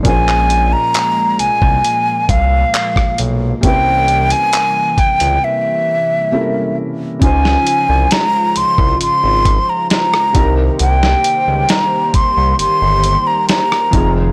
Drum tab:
HH |x-x-x-x-x-x-x-x-|x-xxx-xx--------|x-x-x-x-x-x-x-x-|x-x-x-x-x-x-x-x-|
CP |-x--x-------x---|----x-----------|----------------|----------------|
SD |-------------r--|----------------|-o--o-------or--|-o--o-------or--|
BD |o------o--o--o--|o-----o---------|o------o--o---o-|------o-------o-|